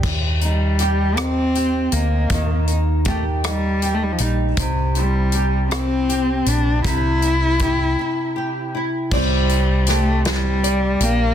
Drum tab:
CC |x-----|------|------|------|
HH |-xxxxx|xxxxxx|xxxxxx|xxx---|
SD |--rr--|---r--|---r--|------|
BD |o-----|o-o---|o-----|o-o---|

CC |x-----|
HH |-xxxxx|
SD |--oo--|
BD |o-----|